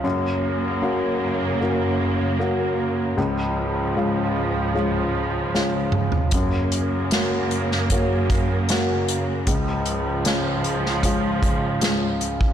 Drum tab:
HH |----------------|----------------|x-x-x-x-x-x-x-x-|x-x-x-x-x-x-x-x-|
SD |----------------|------------o---|----o--o----o---|----o--o----o---|
T2 |----------------|--------------o-|----------------|----------------|
FT |----------------|---------------o|----------------|----------------|
BD |----------------|----------------|o-------o-o-----|o-------o-o----o|